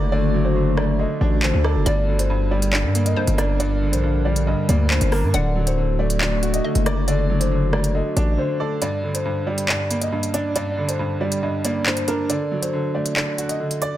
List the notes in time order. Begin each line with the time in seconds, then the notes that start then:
Already playing: F#1 D3 F#3 A3 F#4 D5
0.12 D3 D5
0.34 F#3
0.45 C5
0.56 D3
0.77 A3 D5, cross-stick
0.99 D3 D#5
1.21 A1 D4 D5
1.43 D3 C5, clap
1.53 D2
1.64 A4 D5, cross-stick
1.75 F#1
1.86 G1 G2 D3 G3 A#4 D5, closed hi-hat
2.08 D3
2.19 C5, closed hi-hat
2.30 G2
2.51 G3 D5
2.62 closed hi-hat
2.73 G2 D5, clap
2.84 G2
2.95 A#3, closed hi-hat
3.06 D#5, closed hi-hat
3.16 G2 C5
3.27 G1, closed hi-hat
3.38 D4 D5, cross-stick, closed hi-hat
3.60 G2 D5, closed hi-hat
3.82 D3
3.92 A#1 C5, closed hi-hat
4.03 G2
4.25 G3 D5
4.36 closed hi-hat
4.47 G2 D#5
4.69 D2 A#3 D5, closed hi-hat
4.90 G2 C5, clap
5.01 G1, closed hi-hat
5.12 D4 A#4, cross-stick, open hi-hat
5.23 G2
5.34 D1 D3 A3 F#4 D5 F#5, closed hi-hat
5.56 F#3
5.67 C5, closed hi-hat
5.78 D3
5.99 A3 D5
6.10 closed hi-hat
6.21 D3 D5, clap
6.42 F#4, closed hi-hat
6.54 D#5, closed hi-hat
6.64 D3 D#5
6.75 F#1, closed hi-hat
6.86 D5, cross-stick, closed hi-hat
7.08 D3 D5, closed hi-hat
7.30 F#3
7.40 C5, closed hi-hat
7.51 D3
7.73 A3 D5, cross-stick
7.84 closed hi-hat
7.95 D3 D#5
8.16 A1 D4 D5, closed hi-hat
8.38 D3 C5
8.60 A4 D5
8.82 G2 D5, closed hi-hat
9.04 D3
9.14 C5, closed hi-hat
9.25 G2
9.47 G3 D5
9.58 closed hi-hat
9.68 G2 D5, clap
9.90 A#3, closed hi-hat
10.01 D#5, closed hi-hat
10.12 G2
10.23 closed hi-hat
10.34 D4 D5, closed hi-hat
10.55 G2 D5, closed hi-hat
10.77 D3
10.88 C5, closed hi-hat
10.99 G2
11.21 G3 D5
11.32 closed hi-hat
11.43 G2 D#5
11.64 A#3 D5, closed hi-hat
11.86 G2 C5, clap
11.97 closed hi-hat
12.08 D4 A#4, closed hi-hat
12.30 D3 D5, closed hi-hat
12.51 F#3
12.62 C5, closed hi-hat
12.73 D3
12.95 A3 D5
13.06 closed hi-hat
13.16 D3 D5, clap
13.38 F#4, closed hi-hat
13.49 D#5, closed hi-hat
13.60 D3
13.71 closed hi-hat
13.82 D5, closed hi-hat